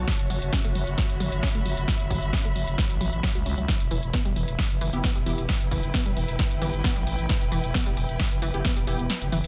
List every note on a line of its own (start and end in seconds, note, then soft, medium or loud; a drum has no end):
0.00 3.68 F#4 medium
0.00 4.78 C#5 medium
0.00 0.32 F#5 medium
0.00 0.84 A5 medium
0.07 kick loud
0.07 snare loud
0.07 closed hi-hat medium
0.19 0.27 F#1 medium
0.19 5.04 E5 medium
0.19 closed hi-hat medium
0.30 0.39 F#1 medium
0.30 0.36 F#3 loud
0.30 open hi-hat loud
0.42 0.50 F#1 medium
0.42 closed hi-hat medium
0.53 0.59 C#4 loud
0.53 kick loud
0.53 snare loud
0.53 closed hi-hat medium
0.64 0.72 F#1 medium
0.64 0.73 A3 medium
0.64 closed hi-hat medium
0.70 4.89 B5 medium
0.75 0.84 F#1 loud
0.75 0.84 F#3 medium
0.75 open hi-hat loud
0.87 0.95 F#1 loud
0.87 closed hi-hat medium
0.98 kick loud
0.98 snare loud
0.98 closed hi-hat medium
1.10 1.18 G1 medium
1.10 closed hi-hat medium
1.20 1.29 G1 medium
1.20 1.26 F#3 loud
1.20 open hi-hat loud
1.32 1.40 G1 medium
1.32 closed hi-hat medium
1.43 1.49 C#4 loud
1.43 kick loud
1.43 snare loud
1.43 closed hi-hat medium
1.55 1.63 F#1 medium
1.55 1.63 A3 medium
1.55 closed hi-hat medium
1.65 1.74 F#1 medium
1.65 1.74 F#3 medium
1.65 open hi-hat loud
1.77 1.85 F#1 medium
1.77 closed hi-hat medium
1.88 kick loud
1.88 snare loud
1.88 closed hi-hat medium
2.00 2.08 G1 medium
2.00 closed hi-hat medium
2.10 2.19 G1 medium
2.10 2.16 F#3 loud
2.10 kick medium
2.10 open hi-hat loud
2.22 2.30 G1 medium
2.22 closed hi-hat medium
2.33 2.39 C#4 loud
2.33 kick loud
2.33 snare loud
2.33 closed hi-hat medium
2.45 2.53 F#1 medium
2.45 2.53 A3 medium
2.45 closed hi-hat medium
2.56 2.64 F#1 loud
2.56 2.65 F#3 medium
2.56 open hi-hat loud
2.67 2.75 F#1 medium
2.67 closed hi-hat medium
2.78 kick loud
2.78 snare loud
2.78 closed hi-hat medium
2.90 2.98 A1 medium
2.90 closed hi-hat medium
3.01 3.10 A1 medium
3.01 3.07 F#3 loud
3.01 open hi-hat loud
3.13 3.21 A1 medium
3.13 closed hi-hat medium
3.23 3.29 F#3 loud
3.23 kick loud
3.23 snare loud
3.23 closed hi-hat medium
3.35 3.43 C#2 medium
3.35 3.43 F#4 medium
3.35 closed hi-hat medium
3.46 3.55 C#2 loud
3.46 3.52 C#4 medium
3.46 open hi-hat loud
3.58 3.66 C#2 medium
3.58 3.63 F#3 medium
3.58 closed hi-hat medium
3.68 9.47 E4 medium
3.68 kick loud
3.68 snare loud
3.68 closed hi-hat medium
3.80 3.88 E1 medium
3.80 closed hi-hat medium
3.91 4.00 E1 medium
3.91 3.97 E3 loud
3.91 open hi-hat loud
4.03 4.11 E1 medium
4.03 closed hi-hat medium
4.11 4.20 B3 loud
4.11 9.47 B4 medium
4.11 kick loud
4.11 snare loud
4.11 closed hi-hat medium
4.25 4.33 E1 medium
4.25 4.33 G3 medium
4.25 closed hi-hat medium
4.36 4.45 E1 loud
4.36 4.45 E3 medium
4.36 open hi-hat medium
4.48 4.56 E1 loud
4.48 closed hi-hat medium
4.59 kick loud
4.59 snare loud
4.59 closed hi-hat medium
4.70 4.78 F#1 medium
4.70 closed hi-hat medium
4.81 4.90 F#1 loud
4.81 4.87 E3 loud
4.81 open hi-hat loud
4.93 5.01 F#1 medium
4.93 5.03 B3 loud
4.93 5.03 E4 medium
4.93 5.03 G4 loud
4.93 closed hi-hat medium
5.04 5.10 B3 loud
5.04 kick loud
5.04 snare loud
5.04 closed hi-hat medium
5.16 5.24 E1 medium
5.16 5.24 G3 medium
5.16 closed hi-hat medium
5.26 5.35 E1 medium
5.26 5.35 E3 medium
5.26 5.43 B3 loud
5.26 5.43 E4 medium
5.26 5.43 G4 loud
5.26 open hi-hat loud
5.38 5.46 E1 medium
5.38 closed hi-hat medium
5.45 9.47 G5 medium
5.45 kick loud
5.45 snare loud
5.45 closed hi-hat medium
5.61 5.69 F#1 medium
5.61 closed hi-hat medium
5.71 5.80 F#1 medium
5.71 5.77 E3 loud
5.71 kick medium
5.71 open hi-hat loud
5.83 5.91 F#1 medium
5.83 closed hi-hat medium
5.94 6.00 B3 loud
5.94 kick loud
5.94 snare loud
5.94 closed hi-hat medium
6.06 6.14 E1 medium
6.06 6.14 G3 medium
6.06 closed hi-hat medium
6.16 6.25 E1 loud
6.16 6.26 E3 medium
6.16 open hi-hat loud
6.28 6.36 E1 loud
6.28 closed hi-hat medium
6.39 kick loud
6.39 snare loud
6.39 closed hi-hat medium
6.51 6.59 G1 medium
6.51 closed hi-hat medium
6.62 6.70 G1 loud
6.62 6.68 E3 loud
6.62 6.73 B3 medium
6.62 6.73 E4 medium
6.62 6.73 G4 loud
6.62 open hi-hat loud
6.73 6.81 G1 medium
6.73 closed hi-hat medium
6.84 6.90 B3 loud
6.84 kick loud
6.84 snare loud
6.84 closed hi-hat medium
6.96 7.04 A1 medium
6.96 7.04 G3 medium
6.96 closed hi-hat medium
7.07 7.16 A1 loud
7.07 7.16 E3 medium
7.07 open hi-hat loud
7.19 7.27 A1 medium
7.19 closed hi-hat medium
7.29 kick loud
7.29 snare loud
7.29 closed hi-hat medium
7.41 7.49 E1 medium
7.41 closed hi-hat medium
7.52 7.61 E1 medium
7.52 7.58 E3 loud
7.52 open hi-hat loud
7.64 7.72 E1 loud
7.64 closed hi-hat medium
7.74 7.80 B3 loud
7.74 kick loud
7.74 snare loud
7.74 closed hi-hat medium
7.86 7.94 E1 medium
7.86 7.94 G3 medium
7.86 closed hi-hat medium
7.97 8.06 E1 loud
7.97 8.06 E3 medium
7.97 open hi-hat medium
8.09 8.17 E1 medium
8.09 closed hi-hat medium
8.20 kick loud
8.20 snare loud
8.20 closed hi-hat medium
8.31 8.39 F#1 medium
8.31 closed hi-hat medium
8.42 8.51 F#1 loud
8.42 8.48 E3 loud
8.42 open hi-hat loud
8.54 8.62 F#1 medium
8.54 8.64 B3 loud
8.54 8.64 E4 medium
8.54 8.64 G4 loud
8.54 closed hi-hat medium
8.65 8.71 B3 loud
8.65 kick loud
8.65 snare loud
8.65 closed hi-hat medium
8.76 8.84 E1 medium
8.76 8.85 G3 medium
8.76 closed hi-hat medium
8.87 8.96 E1 medium
8.87 8.96 E3 medium
8.87 9.04 B3 loud
8.87 9.04 E4 medium
8.87 9.04 G4 loud
8.87 open hi-hat loud
8.99 9.07 E1 medium
8.99 closed hi-hat medium
9.10 snare loud
9.10 closed hi-hat medium
9.22 9.30 F#1 medium
9.22 closed hi-hat medium
9.32 9.41 F#1 medium
9.32 9.38 E3 loud
9.32 open hi-hat loud